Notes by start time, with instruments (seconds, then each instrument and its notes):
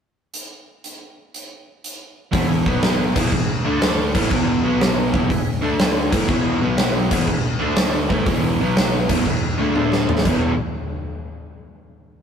0.34 closed hi-hat
0.84 closed hi-hat
1.34 closed hi-hat
1.84 closed hi-hat
2.32 picked electric bass E1, overdriven electric guitar E2 B2 E3, tonewheel organ E4 G#4 B4, kick, open hi-hat
2.66 picked electric bass B1, overdriven electric guitar B2 F#3 B3, tonewheel organ B3 F#4 B4, kick
2.82 snare, open hi-hat
3.14 picked electric bass E1, overdriven electric guitar E2 B2 E3, tonewheel organ B3 E4 G#4, kick, crash
3.32 picked electric bass E1, overdriven electric guitar E2 B2, kick
3.64 picked electric bass D2, overdriven electric guitar D3 A3 D4, tonewheel organ A3 D4 A4
3.82 snare, open hi-hat
4.15 picked electric bass A1, overdriven electric guitar A2 E3 A3, tonewheel organ B3 E4 G#4, kick, crash
4.31 picked electric bass E1, overdriven electric guitar E2 B2 E3, kick
4.63 picked electric bass B1, overdriven electric guitar B2 F#3 B3, tonewheel organ B3 F#4 B4
4.81 snare, open hi-hat
5.13 picked electric bass E1, overdriven electric guitar E2 B2 E3, tonewheel organ B3 E4 G#4, kick
5.29 picked electric bass E1, overdriven electric guitar E2 B2, kick, open hi-hat
5.62 picked electric bass D2, overdriven electric guitar D3 A3 D4, tonewheel organ A3 D4 A4
5.79 tonewheel organ G#5, snare, open hi-hat
6.11 picked electric bass A1, overdriven electric guitar A2 E3 A3, tonewheel organ B3 E4 G#4, kick, crash
6.29 picked electric bass E1, overdriven electric guitar E2 B2 E3, kick
6.60 picked electric bass B1, overdriven electric guitar B2 F#3 B3, tonewheel organ B3 F#4 B4
6.78 snare, open hi-hat
7.11 overdriven electric guitar E2 B2 E3, tonewheel organ B3 E4 G#4, kick, crash
7.28 picked electric bass E1, overdriven electric guitar E2 B2, kick
7.60 picked electric bass D2, overdriven electric guitar D3 A3 D4, tonewheel organ A3 D4 A4
7.76 snare, open hi-hat
8.10 picked electric bass A1, overdriven electric guitar A2 E3 A3, tonewheel organ B3 E4 G#4, kick
8.26 picked electric bass E1, overdriven electric guitar E2 B2 E3, kick, open hi-hat
8.60 picked electric bass B1, overdriven electric guitar B2 F#3 B3, tonewheel organ B3 F#4 B4
8.77 snare, open hi-hat
9.08 picked electric bass E1, overdriven electric guitar E2 B2 E3, tonewheel organ B3 E4 G#4, kick, crash
9.25 picked electric bass E1, overdriven electric guitar E2 B2, kick
9.58 picked electric bass D2, overdriven electric guitar D3 A3 D4, tonewheel organ B3 E4 G#4
9.74 picked electric bass D2, overdriven electric guitar D3 A3 D4, tonewheel organ A3 D4 A4, high tom
9.92 snare
10.09 tonewheel organ A3 D4 A4, mid tom
10.18 snare
10.25 picked electric bass E1, overdriven electric guitar E2 B2 E3, tonewheel organ B3 E4 G#4, kick, crash